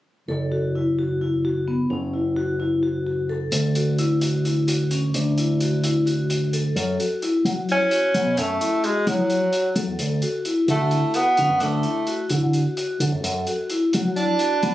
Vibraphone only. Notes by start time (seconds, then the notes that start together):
0.29 A4
0.52 F#4
0.75 E4
0.99 F#4
1.21 E4
1.45 F#4
1.68 B3
1.90 C#4
2.14 E4
2.36 F#4
2.60 E4
2.83 F#4
3.06 F#4
3.29 A4
3.52 A4
3.76 F#4
3.99 E4
4.22 F#4
4.45 E4
4.68 F#4
4.91 C#4
5.14 D4
5.38 E4
5.61 F#4
5.84 E4
6.06 F#4
6.30 F#4
6.53 A4
6.76 A4
7.00 F#4
7.23 E4
7.69 E4
7.91 F#4
8.15 B3
8.38 C#4
8.61 E4
8.85 F#4
9.07 E4
9.30 F#4
9.53 F#4
9.77 A4
10.00 A4
10.23 F#4
10.46 E4
10.69 F#4
10.92 E4
11.15 F#4
11.39 C#4
11.62 D4
11.85 E4
12.08 F#4
12.31 E4
12.54 F#4
12.77 F#4
13.00 A4
13.24 A4
13.48 F#4
13.71 E4
13.94 F#4
14.17 E4
14.40 F#4
14.63 B3